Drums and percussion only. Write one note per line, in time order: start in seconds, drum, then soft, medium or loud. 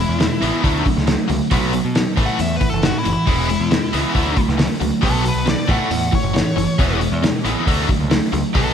0.20 snare loud
0.20 open hi-hat medium
0.42 open hi-hat medium
0.64 kick medium
0.64 open hi-hat medium
0.86 kick medium
0.86 open hi-hat medium
0.98 snare soft
1.07 snare loud
1.07 open hi-hat medium
1.29 open hi-hat medium
1.51 kick loud
1.51 open hi-hat medium
1.73 open hi-hat medium
1.95 snare loud
1.95 open hi-hat medium
2.17 kick loud
2.17 open hi-hat medium
2.39 open hi-hat medium
2.61 kick medium
2.61 open hi-hat medium
2.83 snare loud
2.83 open hi-hat medium
3.05 open hi-hat medium
3.27 kick loud
3.27 open hi-hat medium
3.49 open hi-hat medium
3.71 snare medium
3.71 open hi-hat medium
3.93 open hi-hat medium
4.15 kick medium
4.15 open hi-hat medium
4.37 kick medium
4.37 open hi-hat medium
4.49 snare soft
4.59 snare loud
4.59 open hi-hat medium
4.81 open hi-hat medium
5.03 kick loud
5.03 open hi-hat medium
5.26 open hi-hat medium
5.47 snare medium
5.47 open hi-hat medium
5.69 kick loud
5.69 open hi-hat medium
5.91 open hi-hat medium
6.13 kick medium
6.13 open hi-hat medium
6.36 snare loud
6.36 open hi-hat medium
6.58 open hi-hat medium
6.79 kick loud
6.79 open hi-hat medium
7.01 open hi-hat medium
7.24 snare loud
7.24 open hi-hat medium
7.45 open hi-hat medium
7.67 kick medium
7.67 open hi-hat medium
7.89 kick medium
7.89 open hi-hat medium
8.11 snare loud
8.11 open hi-hat medium
8.33 open hi-hat soft
8.55 kick loud
8.55 open hi-hat medium